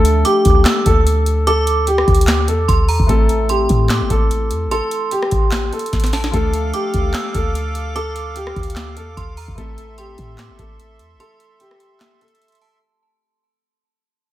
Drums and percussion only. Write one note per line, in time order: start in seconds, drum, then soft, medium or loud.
0.05 closed hi-hat medium
0.25 closed hi-hat medium
0.45 kick loud
0.45 closed hi-hat medium
0.65 snare loud
0.65 clap loud
0.65 closed hi-hat medium
0.86 kick medium
0.86 closed hi-hat medium
1.07 closed hi-hat medium
1.26 closed hi-hat medium
1.47 closed hi-hat medium
1.67 closed hi-hat medium
1.87 closed hi-hat medium
1.98 cross-stick loud
2.08 kick loud
2.08 closed hi-hat soft
2.15 closed hi-hat medium
2.21 closed hi-hat medium
2.27 snare loud
2.27 clap loud
2.27 closed hi-hat medium
2.48 closed hi-hat medium
2.69 kick loud
2.69 closed hi-hat medium
2.89 open hi-hat medium
3.00 kick loud
3.09 kick loud
3.09 closed hi-hat medium
3.29 closed hi-hat medium
3.49 closed hi-hat medium
3.69 kick loud
3.69 closed hi-hat medium
3.89 snare loud
3.89 clap loud
3.89 closed hi-hat medium
4.10 kick medium
4.10 closed hi-hat medium
4.31 closed hi-hat medium
4.51 closed hi-hat medium
4.71 closed hi-hat medium
4.91 closed hi-hat medium
5.11 closed hi-hat medium
5.22 cross-stick loud
5.31 kick loud
5.31 closed hi-hat medium
5.51 snare loud
5.51 clap loud
5.51 closed hi-hat medium
5.73 closed hi-hat soft
5.79 closed hi-hat medium
5.86 closed hi-hat medium
5.93 kick loud
5.93 snare medium
5.93 closed hi-hat medium
6.00 snare medium
6.00 closed hi-hat medium
6.04 closed hi-hat medium
6.06 closed hi-hat medium
6.13 snare loud
6.13 open hi-hat medium
6.24 snare loud
6.33 kick loud
6.33 closed hi-hat medium
6.54 closed hi-hat medium
6.74 closed hi-hat medium
6.94 kick loud
6.94 closed hi-hat medium
7.14 snare loud
7.14 clap loud
7.14 closed hi-hat medium
7.35 kick medium
7.35 closed hi-hat medium
7.55 closed hi-hat medium
7.75 closed hi-hat medium
7.96 closed hi-hat medium
8.16 closed hi-hat medium
8.36 closed hi-hat medium
8.47 cross-stick loud
8.56 kick loud
8.56 closed hi-hat soft
8.63 closed hi-hat medium
8.70 closed hi-hat medium
8.76 snare loud
8.76 clap loud
8.76 closed hi-hat medium
8.97 closed hi-hat medium
9.17 kick loud
9.17 closed hi-hat medium
9.37 open hi-hat medium
9.48 kick loud
9.58 kick loud
9.58 closed hi-hat medium
9.78 closed hi-hat medium
9.98 closed hi-hat medium
10.18 kick loud
10.18 closed hi-hat medium
10.38 snare loud
10.38 clap loud
10.38 closed hi-hat medium
10.59 kick medium
10.59 closed hi-hat medium
10.80 closed hi-hat medium
10.99 closed hi-hat medium
11.20 closed hi-hat medium
11.40 closed hi-hat medium
11.60 closed hi-hat medium
11.71 cross-stick loud
11.80 closed hi-hat medium
12.00 snare loud
12.00 clap loud
12.00 closed hi-hat medium
12.21 closed hi-hat soft
12.28 closed hi-hat medium
12.35 closed hi-hat medium
12.42 closed hi-hat medium
12.48 closed hi-hat medium
12.52 closed hi-hat medium
12.55 closed hi-hat medium
12.62 open hi-hat medium